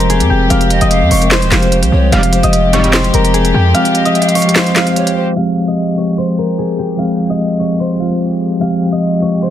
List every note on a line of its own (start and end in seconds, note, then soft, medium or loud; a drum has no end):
0.00 0.22 F1 loud
0.00 0.48 F3 loud
0.00 2.08 F3 medium
0.00 0.49 G#3 loud
0.00 0.50 C4 loud
0.00 2.09 C4 medium
0.00 0.51 G4 loud
0.00 2.09 G4 medium
0.00 2.02 A#4 medium
0.00 1.17 C5 medium
0.00 0.81 D#5 medium
0.00 0.50 F5 loud
0.00 closed hi-hat medium
0.10 0.36 G#4 medium
0.10 closed hi-hat medium
0.20 0.29 F2 loud
0.20 closed hi-hat medium
0.30 0.49 F1 loud
0.30 2.65 G4 medium
0.48 0.80 F1 loud
0.48 1.03 F3 loud
0.48 1.03 G#3 medium
0.48 1.04 C4 loud
0.48 1.04 G4 loud
0.48 1.51 F5 loud
0.48 closed hi-hat medium
0.61 closed hi-hat medium
0.70 0.90 D#5 medium
0.70 closed hi-hat medium
0.81 1.03 F1 loud
0.81 2.43 D#5 medium
0.81 closed hi-hat medium
0.91 1.29 F5 medium
0.91 closed hi-hat medium
1.02 1.11 F2 loud
1.11 1.44 F1 loud
1.11 1.37 C#5 medium
1.11 open hi-hat medium
1.19 1.43 F3 medium
1.19 1.44 G#3 medium
1.19 1.44 C4 medium
1.19 1.45 A#4 medium
1.19 closed hi-hat medium
1.31 2.79 C5 medium
1.31 1.89 C5 medium
1.31 snare loud
1.31 clap medium
1.31 closed hi-hat medium
1.42 1.51 D#1 loud
1.42 closed hi-hat medium
1.50 1.84 F1 loud
1.50 1.97 F3 medium
1.50 1.97 G#3 medium
1.50 1.98 C4 medium
1.50 1.98 G4 medium
1.50 2.12 F5 medium
1.50 snare medium
1.50 clap medium
1.50 closed hi-hat medium
1.62 closed hi-hat medium
1.72 closed hi-hat medium
1.83 1.91 C2 loud
1.83 closed hi-hat medium
1.92 2.12 C2 loud
1.92 2.11 C#5 medium
2.10 2.42 F1 loud
2.10 2.21 C2 medium
2.10 2.21 G#2 loud
2.10 2.57 F3 loud
2.10 5.33 F3 medium
2.10 2.21 G3 loud
2.10 2.57 G#3 medium
2.10 2.58 C4 loud
2.10 5.33 C4 medium
2.10 5.33 G4 medium
2.10 2.59 G4 loud
2.10 3.74 F5 loud
2.10 closed hi-hat medium
2.23 closed hi-hat medium
2.33 2.52 C5 medium
2.33 closed hi-hat medium
2.43 3.11 F1 loud
2.43 4.05 D#5 medium
2.43 closed hi-hat medium
2.53 closed hi-hat medium
2.71 3.03 C2 loud
2.71 3.03 G#2 loud
2.71 2.80 F3 medium
2.71 3.03 G3 loud
2.71 2.81 G#3 medium
2.71 2.81 C4 medium
2.71 2.82 G4 medium
2.71 3.00 C#5 medium
2.71 closed hi-hat medium
2.82 3.05 F3 medium
2.82 3.06 G#3 medium
2.82 3.07 C4 medium
2.82 3.07 G4 medium
2.82 closed hi-hat medium
2.93 4.41 C5 medium
2.93 snare loud
2.93 clap medium
2.93 closed hi-hat medium
3.04 closed hi-hat medium
3.12 3.53 F1 loud
3.12 3.59 F3 medium
3.12 3.59 G#3 medium
3.12 3.60 C4 medium
3.12 3.60 G4 medium
3.12 5.26 A#4 medium
3.12 closed hi-hat medium
3.25 closed hi-hat medium
3.34 3.60 G#4 medium
3.34 closed hi-hat medium
3.45 closed hi-hat medium
3.54 3.74 F2 loud
3.54 5.90 G4 medium
3.73 4.27 F3 loud
3.73 4.28 G#3 medium
3.73 4.29 C4 medium
3.73 4.29 G4 loud
3.73 4.76 F5 loud
3.73 closed hi-hat medium
3.85 closed hi-hat medium
3.95 4.14 D#5 medium
3.95 closed hi-hat medium
4.05 5.67 D#5 medium
4.05 closed hi-hat medium
4.15 4.28 E5 medium
4.15 closed hi-hat medium
4.22 closed hi-hat medium
4.28 4.92 F5 medium
4.28 closed hi-hat medium
4.35 4.61 C#5 medium
4.35 closed hi-hat medium
4.35 open hi-hat medium
4.42 4.68 F3 medium
4.42 4.68 G#3 medium
4.42 closed hi-hat medium
4.46 4.69 C4 medium
4.46 4.69 G4 medium
4.46 closed hi-hat medium
4.55 6.04 C5 medium
4.55 snare loud
4.55 clap medium
4.55 closed hi-hat medium
4.67 closed hi-hat medium
4.74 5.21 F3 medium
4.74 5.21 G#3 medium
4.74 5.22 C4 medium
4.74 5.22 G4 medium
4.74 5.36 F5 medium
4.74 snare medium
4.74 clap medium
4.74 closed hi-hat medium
4.87 closed hi-hat medium
4.96 5.15 C#5 medium
4.96 closed hi-hat medium
5.07 closed hi-hat medium
5.16 5.36 C5 medium
5.35 5.59 F3 loud
5.35 9.50 F3 medium
5.35 5.59 G#3 medium
5.35 8.58 G#3 medium
5.35 5.60 C4 medium
5.35 8.58 G4 medium
5.35 5.61 G4 loud
5.35 6.98 F5 loud
5.66 5.90 F3 medium
5.66 5.90 G#3 medium
5.66 5.91 C4 medium
5.66 5.91 G4 medium
5.66 7.29 D#5 medium
5.95 6.57 F3 medium
5.95 6.57 G#3 medium
5.95 6.58 C4 medium
5.95 6.59 G4 medium
5.95 6.24 C#5 medium
6.18 7.66 C5 medium
6.38 8.50 A#4 medium
6.58 6.85 G#4 medium
6.79 9.14 G4 medium
6.97 7.21 F3 medium
6.97 7.21 G#3 medium
6.97 7.22 C4 medium
6.97 7.22 G#4 loud
6.97 8.00 F5 loud
7.28 7.51 F3 medium
7.28 7.52 G#3 medium
7.28 7.52 C4 medium
7.28 7.53 G4 medium
7.28 8.92 D#5 medium
7.58 7.90 F3 medium
7.58 7.90 G#3 medium
7.58 7.91 C4 medium
7.58 7.92 G4 medium
7.58 7.86 C#5 medium
7.80 9.28 C5 medium
7.98 8.45 F3 medium
7.98 8.45 G#3 medium
7.98 8.46 C4 medium
7.98 8.47 F4 medium
7.98 8.60 F5 medium
8.59 8.83 F3 loud
8.59 8.83 G#3 medium
8.59 9.50 G#3 medium
8.59 8.84 C4 medium
8.59 9.50 G4 medium
8.59 8.85 G4 loud
8.59 9.50 F5 loud
8.89 9.13 F3 medium
8.89 9.14 G#3 medium
8.89 9.14 C4 medium
8.89 9.15 G4 medium
8.89 9.50 D#5 medium
9.20 9.50 F3 medium
9.20 9.50 G#3 medium
9.20 9.50 C4 medium
9.20 9.50 G4 medium
9.20 9.48 C#5 medium
9.42 9.50 C5 medium